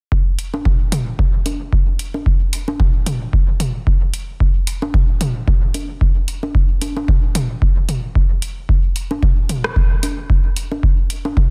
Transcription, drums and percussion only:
0.12 kick
0.39 closed hi-hat
0.54 high conga
0.65 kick, mid tom
0.92 closed hi-hat, mid tom
1.19 kick, mid tom
1.46 closed hi-hat, high conga
1.73 kick
1.99 closed hi-hat
2.14 high conga
2.26 kick
2.53 closed hi-hat
2.68 high conga
2.80 kick, mid tom
3.06 closed hi-hat, mid tom
3.33 kick
3.60 closed hi-hat, mid tom
3.87 kick
4.14 closed hi-hat
4.40 kick
4.67 closed hi-hat
4.82 high conga
4.94 kick, mid tom
5.21 closed hi-hat, mid tom
5.48 kick, mid tom
5.74 closed hi-hat, high conga
6.01 kick
6.28 closed hi-hat
6.43 high conga
6.55 kick
6.82 closed hi-hat, high conga
6.97 high conga
7.08 kick, mid tom
7.35 closed hi-hat, mid tom
7.62 kick
7.89 closed hi-hat, mid tom
8.15 kick
8.42 closed hi-hat
8.69 kick
8.96 closed hi-hat
9.11 high conga
9.23 kick, mid tom
9.49 closed hi-hat, mid tom
9.64 cross-stick
9.76 kick, mid tom
10.03 closed hi-hat, high conga
10.30 kick
10.56 closed hi-hat
10.72 high conga
10.83 kick
11.10 closed hi-hat
11.25 high conga
11.37 kick, mid tom

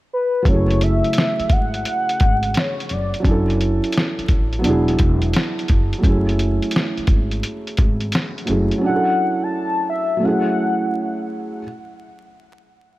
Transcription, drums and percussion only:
0.45 kick, closed hi-hat
0.70 closed hi-hat
0.81 closed hi-hat
1.04 closed hi-hat
1.13 closed hi-hat
1.18 snare
1.40 closed hi-hat
1.49 kick, closed hi-hat
1.74 closed hi-hat
1.85 closed hi-hat
2.09 closed hi-hat
2.20 kick, closed hi-hat
2.43 closed hi-hat
2.54 snare, closed hi-hat
2.80 closed hi-hat
2.89 closed hi-hat
3.14 closed hi-hat
3.25 kick, closed hi-hat
3.50 closed hi-hat
3.61 closed hi-hat
3.84 closed hi-hat
3.92 closed hi-hat
3.98 snare
4.19 closed hi-hat
4.28 kick, closed hi-hat
4.53 closed hi-hat
4.64 closed hi-hat
4.88 closed hi-hat
4.99 kick, closed hi-hat
5.22 closed hi-hat
5.33 snare, closed hi-hat
5.59 closed hi-hat
5.68 kick, closed hi-hat
5.93 closed hi-hat
6.04 kick, closed hi-hat
6.29 closed hi-hat
6.39 closed hi-hat
6.62 closed hi-hat
6.71 closed hi-hat
6.76 snare
6.97 closed hi-hat
7.07 kick, closed hi-hat
7.31 closed hi-hat
7.43 closed hi-hat
7.67 closed hi-hat
7.77 kick, closed hi-hat
8.01 closed hi-hat
8.12 snare, closed hi-hat
8.38 closed hi-hat
8.47 closed hi-hat
8.71 closed hi-hat

